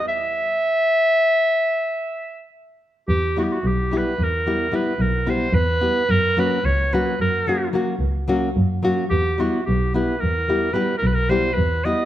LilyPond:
<<
  \new Staff \with { instrumentName = "Clarinet" } { \time 11/8 \tempo 4 = 110 e''1~ e''8 r4 | g'8 fis'32 g'32 fis'16 g'8 b'8 ais'4 b'8 ais'8 c''8 b'4 | ais'8 b'8 cis''8 b'8 ais'4 r2 r8 | g'8 fis'8 g'8 b'8 ais'4 b'8 ais'32 b'32 ais'16 c''8 b'8 dis''8 | }
  \new Staff \with { instrumentName = "Nylon-string guitar" } { \time 11/8 r1 r4. | r8 <g b e' g'>8 r8 <g b e' g'>8 r8 <g b e' g'>8 <g b e' g'>8 r8 <g b e' g'>8 r8 <g b e' g'>8 | r8 <fis ais cis' fis'>8 r8 <fis ais cis' fis'>8 r8 <fis ais cis' fis'>8 <fis ais cis' fis'>8 r8 <fis ais cis' fis'>8 r8 <fis ais cis' fis'>8 | r8 <g b e' g'>8 r8 <g b e' g'>8 r8 <g b e' g'>8 <g b e' g'>8 r8 <g b e' g'>8 r8 <g b e' g'>8 | }
  \new Staff \with { instrumentName = "Double bass" } { \clef bass \time 11/8 r1 r4. | e,4 b,,4 e,4. b,,4 e,8 r8 | fis,4 cis,4 fis,4. cis,4 fis,8 r8 | e,4 b,,4 e,4. b,,4 e,8 r8 | }
>>